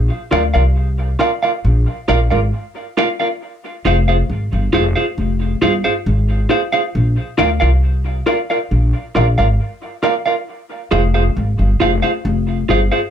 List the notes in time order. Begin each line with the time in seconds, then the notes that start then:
0.31 D2 F4 A#4 D5 F5
0.54 C2 F4 A#4 D5 F5
1.19 F4 A#4 D5 F5
1.42 F4 A#4 D5 F5
1.65 A#1
2.08 A#1 F4 A#4 D5 F5
2.30 G#1 F4 A#4 D5 F5
2.97 F4 A#4 D5 F5
3.20 F4 A#4 D5 F5
3.85 F1 F4 G#4 C5 F5
4.08 F4 G#4 C5 F5
4.29 G#1
4.53 G1
4.73 F1 F4 G#4 C5 F5
4.96 F4 G#4 C5 F5
5.18 F1
5.62 G1 F4 G#4 C5 F5
5.84 F4 G#4 C5 F5
6.06 G#1
6.49 F4 G#4 C5 F5
6.72 F4 G#4 C5 F5
6.95 A#1
7.38 D2 F4 A#4 D5 F5
7.60 C2 F4 A#4 D5 F5
8.26 F4 A#4 D5 F5
8.50 F4 A#4 D5 F5
8.71 A#1
9.15 A#1 F4 A#4 D5 F5
9.38 G#1 F4 A#4 D5 F5
10.03 F4 A#4 D5 F5
10.26 F4 A#4 D5 F5
10.91 F1 F4 G#4 C5 F5
11.14 F4 G#4 C5 F5
11.37 G#1
11.59 G1
11.80 F1 F4 G#4 C5 F5
12.02 F4 G#4 C5 F5
12.25 F1
12.69 G1 F4 G#4 C5 F5
12.92 F4 G#4 C5 F5